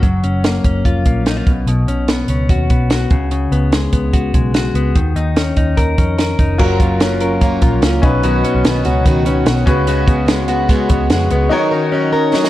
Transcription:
Already playing: clean electric guitar F#4
0.03 picked electric bass F#1, clean electric guitar F#3, kick, closed hi-hat
0.23 picked electric bass F#1, clean electric guitar C#4, closed hi-hat
0.44 clean electric guitar A#3, snare, closed hi-hat
0.64 picked electric bass F#1, clean electric guitar C#4, kick, closed hi-hat
0.85 picked electric bass F1, clean electric guitar F4, kick, closed hi-hat
1.06 picked electric bass A#1, clean electric guitar A#3, kick, closed hi-hat
1.26 clean electric guitar D#4, snare, closed hi-hat
1.37 clean electric guitar F4
1.47 picked electric bass B1, clean electric guitar B2, kick, closed hi-hat
1.67 picked electric bass B1, clean electric guitar B2, closed hi-hat
1.87 picked electric bass B1, clean electric guitar C#4, closed hi-hat
2.08 clean electric guitar B3, snare, closed hi-hat
2.28 picked electric bass C#2, clean electric guitar C#4, closed hi-hat
2.49 picked electric bass D#2, clean electric guitar F#4, kick, closed hi-hat
2.70 picked electric bass B1, clean electric guitar B3, kick, closed hi-hat
2.90 clean electric guitar F#4, snare, closed hi-hat
3.10 picked electric bass C#2, clean electric guitar C#3, kick, closed hi-hat
3.31 clean electric guitar C#3, closed hi-hat
3.52 picked electric bass C#2, clean electric guitar B3, closed hi-hat
3.72 clean electric guitar G#3, snare, closed hi-hat
3.93 picked electric bass C#2, clean electric guitar B3, kick, closed hi-hat
4.13 picked electric bass C#2, clean electric guitar F#4, kick, closed hi-hat
4.34 picked electric bass B1, clean electric guitar G#3, kick, closed hi-hat
4.54 clean electric guitar F#4, snare, closed hi-hat
4.74 picked electric bass C#2, clean electric guitar B3, closed hi-hat
4.96 picked electric bass D#2, clean electric guitar D#3, kick, closed hi-hat
5.16 picked electric bass D#2, clean electric guitar D#4, closed hi-hat
5.36 clean electric guitar C#4, snare, closed hi-hat
5.57 picked electric bass D#2, clean electric guitar D#4, kick, closed hi-hat
5.77 picked electric bass D#2, clean electric guitar A#4, kick, closed hi-hat
5.98 picked electric bass F2, clean electric guitar C#4, kick, closed hi-hat
6.18 clean electric guitar A#4, snare, closed hi-hat
6.39 picked electric bass F1, clean electric guitar D#4, kick, closed hi-hat
6.58 picked electric bass F#1, twelve-string acoustic guitar F#3 A#3 C#4 F4, clean electric guitar F#3 A#4, upright piano F4 F#4 A#4, kick, crash
6.80 twelve-string acoustic guitar A#3 C#4 F4, clean electric guitar F4, kick, closed hi-hat
7.00 twelve-string acoustic guitar F#3 A#3 C#4 F4, clean electric guitar C#4, snare, closed hi-hat
7.20 twelve-string acoustic guitar A#3 C#4 F4, clean electric guitar A#4, closed hi-hat
7.41 twelve-string acoustic guitar F#3 A#3 C#4 F4, clean electric guitar A#3, kick, closed hi-hat
7.61 picked electric bass A#1, twelve-string acoustic guitar A#3 C#4 F4, clean electric guitar F4, kick, closed hi-hat
7.81 picked electric bass C#2, twelve-string acoustic guitar F#3 A#3 C#4 F4, clean electric guitar C#4, snare, closed hi-hat
8.02 picked electric bass B1, clean electric guitar B2, twelve-string acoustic guitar B3 C#4 F#4, upright piano C#4 D#4 B4, kick, closed hi-hat
8.22 picked electric bass B1, twelve-string acoustic guitar B2 D#3 B3 C#4 F#4, clean electric guitar B2 F#4, closed hi-hat
8.43 twelve-string acoustic guitar B3 C#4 F#4, clean electric guitar C#4, closed hi-hat
8.55 picked electric bass B1
8.64 twelve-string acoustic guitar D#3 B3 C#4 F#4, clean electric guitar B3, snare, closed hi-hat
8.84 picked electric bass C#2, twelve-string acoustic guitar B3 C#4 F#4, clean electric guitar F#4, closed hi-hat
9.05 twelve-string acoustic guitar B2 D#3 B3 C#4 F#4, clean electric guitar D#3, kick, closed hi-hat
9.25 twelve-string acoustic guitar B3 C#4 F#4, clean electric guitar C#4, closed hi-hat
9.46 picked electric bass B1, twelve-string acoustic guitar D#3 B3 C#4 F#4, clean electric guitar B3, snare, closed hi-hat
9.66 picked electric bass C#2, clean electric guitar C#3, twelve-string acoustic guitar B3 F#4, upright piano C#4 F#4 B4, kick, closed hi-hat
9.70 twelve-string acoustic guitar G#3
9.87 twelve-string acoustic guitar C#3 G#3 B3 F#4, clean electric guitar C#3 F#4, closed hi-hat
10.06 twelve-string acoustic guitar G#3 B3 F#4, clean electric guitar B3, kick, closed hi-hat
10.26 twelve-string acoustic guitar C#3 G#3 B3 F#4, clean electric guitar G#3, snare, closed hi-hat
10.48 twelve-string acoustic guitar G#3 B3 F#4, clean electric guitar F#4, closed hi-hat
10.69 twelve-string acoustic guitar C#3 G#3 B3 F#4, clean electric guitar G#3, kick, closed hi-hat
10.89 picked electric bass C#2, twelve-string acoustic guitar G#3 B3 F#4, clean electric guitar B3, kick, closed hi-hat
11.10 picked electric bass F2, twelve-string acoustic guitar C#3 G#3 B3 F#4, clean electric guitar G#3, snare, closed hi-hat
11.31 picked electric bass C#2, twelve-string acoustic guitar G#3 B3 F#4, clean electric guitar B3, closed hi-hat
11.49 twelve-string acoustic guitar D#3 F#3 C#4 D#4 A#4, clean electric guitar D#3 A#4, upright piano D#4 F#4 C#5
11.71 twelve-string acoustic guitar C#4 D#4 A#4, clean electric guitar D#4
11.92 twelve-string acoustic guitar F#3 C#4 D#4 A#4, clean electric guitar C#4
12.12 twelve-string acoustic guitar C#4 D#4 A#4, clean electric guitar A#4
12.33 twelve-string acoustic guitar D#3 F#3 C#4 D#4 A#4, clean electric guitar F#3, snare
12.44 snare

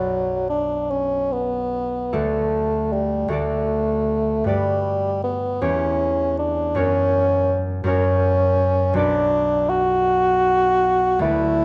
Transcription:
Already playing: harp B1 F#4 B4 D5, bassoon F#3
0.49 bassoon D4
0.91 bassoon C#4
1.33 bassoon B3
2.13 harp D2 F#4 A4 D5, bassoon A3
2.93 bassoon G3
3.28 harp D2 F#4 A4, bassoon A3
3.33 harp D5
4.44 harp G2 F#4 B4, bassoon G3
4.48 harp D5
5.24 bassoon B3
5.61 harp E2 G4 C#5, bassoon C#4
6.39 bassoon D4
6.75 harp F#2 F#4 A#4 C#5, bassoon C#4
7.84 harp F#2 F#4 A#4
7.88 bassoon C#4, harp C#5
8.94 harp B1 F#4 B4, bassoon D4
8.98 harp D5
9.69 bassoon F#4
11.19 harp D2 F#4 B4, bassoon E4
11.24 harp D5

